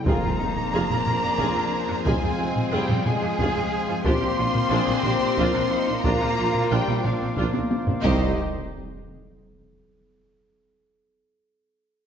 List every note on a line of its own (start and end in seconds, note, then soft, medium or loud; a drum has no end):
0.05 0.13 F1 loud
0.05 0.13 F2 loud
0.05 4.02 F3 medium
0.05 2.05 A#3 loud
0.05 4.02 C4 loud
0.05 0.37 F4 medium
0.05 4.02 F4 medium
0.05 0.22 F4 medium
0.05 4.02 G#4 medium
0.05 0.22 G#4 medium
0.05 4.01 C5 loud
0.05 4.02 C5 medium
0.05 2.02 A#5 loud
0.05 taiko loud
0.05 impact medium
0.23 0.30 F2 medium
0.23 0.31 C4 medium
0.23 0.31 F4 medium
0.39 0.47 F1 medium
0.39 0.47 F2 medium
0.39 0.73 D#4 medium
0.39 0.47 F4 medium
0.56 taiko low-mid medium
0.72 0.80 F1 loud
0.72 0.80 F2 medium
0.72 2.06 D4 medium
0.72 0.89 F4 loud
0.72 0.89 G#4 loud
0.90 0.97 F2 medium
0.90 0.97 C4 medium
0.90 0.98 F4 medium
0.90 taiko low-mid medium
1.06 1.13 F1 medium
1.06 1.13 F2 medium
1.06 1.14 F4 medium
1.06 taiko low-mid medium
1.23 1.30 F2 medium
1.23 1.30 C4 medium
1.23 1.30 F4 medium
1.38 1.46 F1 loud
1.38 1.46 F2 medium
1.38 1.54 F4 loud
1.38 1.54 G#4 loud
1.38 taiko loud
1.55 1.63 F2 medium
1.55 1.61 C4 medium
1.55 1.62 F4 medium
1.89 1.96 F2 medium
1.89 1.96 C4 medium
1.89 1.96 F4 medium
1.89 taiko rim soft
2.05 2.13 F1 loud
2.05 2.13 F2 medium
2.05 2.72 G#3 loud
2.05 3.06 C4 loud
2.05 2.21 F4 medium
2.05 2.21 G#4 medium
2.05 2.71 G#5 medium
2.05 2.74 G#5 loud
2.05 taiko loud
2.22 2.29 F2 medium
2.22 2.29 C4 medium
2.22 2.29 F4 medium
2.38 2.46 F1 medium
2.38 2.46 F2 medium
2.38 2.46 F4 medium
2.56 taiko low-mid medium
2.71 2.79 F1 loud
2.71 2.79 F2 loud
2.71 3.05 G3 loud
2.71 2.87 F4 loud
2.71 2.88 G#4 loud
2.71 3.04 G5 loud
2.71 3.04 G5 medium
2.88 2.95 F2 medium
2.88 2.95 C4 medium
2.88 2.95 F4 medium
2.88 taiko low-mid medium
3.05 3.13 F1 medium
3.05 3.12 F2 medium
3.05 4.06 G#3 loud
3.05 3.12 F4 medium
3.05 4.05 G#4 loud
3.05 4.08 G#5 loud
3.05 4.05 G#5 medium
3.05 taiko low-mid medium
3.22 3.28 F2 medium
3.22 3.29 C4 medium
3.22 3.29 F4 medium
3.22 taiko rim soft
3.39 3.46 F1 loud
3.39 3.45 F2 medium
3.39 3.55 F4 loud
3.39 3.55 G#4 loud
3.39 taiko medium
3.55 3.62 F2 medium
3.55 3.63 C4 medium
3.55 3.63 F4 medium
3.89 3.96 F2 medium
3.89 3.96 C4 medium
3.89 3.96 F4 medium
4.05 4.12 A#1 loud
4.05 8.05 A#3 loud
4.05 5.88 C4 loud
4.05 4.21 D4 loud
4.05 4.21 F4 loud
4.05 8.01 F4 loud
4.05 4.38 G4 loud
4.05 7.85 A#4 medium
4.05 7.81 C5 loud
4.05 8.01 C5 loud
4.05 8.05 D5 loud
4.05 6.01 C6 loud
4.05 5.77 C6 loud
4.05 taiko loud
4.21 4.28 A#1 medium
4.21 4.28 C4 medium
4.21 4.28 D4 medium
4.38 4.45 A#1 medium
4.38 4.46 A#1 medium
4.38 4.45 D4 medium
4.38 4.72 F4 loud
4.55 taiko low-mid medium
4.71 4.78 A#1 loud
4.71 4.79 A#1 loud
4.71 4.87 D4 loud
4.71 4.87 F4 loud
4.71 5.05 G#4 loud
4.88 4.95 A#1 medium
4.88 4.95 C4 loud
4.88 4.95 D4 loud
4.88 taiko low-mid medium
5.04 5.11 A#1 medium
5.04 5.12 A#1 medium
5.04 5.12 D4 medium
5.04 5.38 G4 medium
5.04 taiko low-mid medium
5.21 5.28 A#1 medium
5.21 5.29 C4 loud
5.21 5.29 D4 medium
5.37 5.45 A#1 loud
5.37 5.52 D4 loud
5.37 5.53 F4 loud
5.37 5.72 F4 loud
5.37 taiko loud
5.53 5.62 A#1 medium
5.53 5.61 C4 loud
5.53 5.60 D4 loud
5.53 taiko rim medium
5.71 6.05 D#4 loud
5.88 5.95 A#1 medium
5.88 5.95 C4 medium
5.88 5.94 D4 medium
6.04 6.12 A#1 loud
6.04 6.70 A#3 loud
6.04 6.20 D4 loud
6.04 6.20 F4 loud
6.04 7.03 F4 loud
6.04 6.70 A#5 loud
6.04 6.75 A#5 loud
6.04 taiko loud
6.21 6.29 A#1 medium
6.21 6.28 C4 medium
6.21 6.28 D4 medium
6.21 taiko rim medium
6.38 6.45 A#1 medium
6.38 6.45 D4 medium
6.54 taiko low-mid medium
6.70 6.78 A#1 loud
6.70 7.05 G3 loud
6.70 6.87 D4 loud
6.70 6.87 F4 loud
6.70 7.03 G5 loud
6.70 7.07 G5 loud
6.87 6.95 A#1 medium
6.87 6.95 C4 medium
6.87 6.96 D4 medium
6.87 taiko low-mid medium
7.04 7.12 A#1 medium
7.04 7.38 F3 loud
7.04 7.11 D4 medium
7.04 7.54 D4 medium
7.04 7.37 F5 medium
7.04 7.38 F5 medium
7.04 taiko low-mid medium
7.21 7.29 A#1 medium
7.21 7.28 C4 medium
7.21 7.28 D4 medium
7.37 7.45 A#1 loud
7.37 7.52 D4 loud
7.37 7.53 F4 loud
7.37 taiko loud
7.53 7.62 A#1 medium
7.53 7.60 C4 medium
7.53 7.60 D4 medium
7.53 taiko high loud
7.71 taiko high loud
7.87 7.95 A#1 medium
7.87 7.94 C4 medium
7.87 7.94 D4 medium
7.87 taiko low loud
8.02 8.41 C2 loud
8.02 8.34 C2 loud
8.02 8.35 C3 loud
8.02 8.33 D#3 loud
8.02 8.41 G3 loud
8.02 8.40 C4 medium
8.02 8.41 D#4 medium
8.02 8.41 D#4 loud
8.02 8.41 G4 loud
8.02 8.41 C5 medium
8.02 8.41 C5 loud
8.02 8.41 D#5 loud
8.02 taiko low loud
8.02 impact medium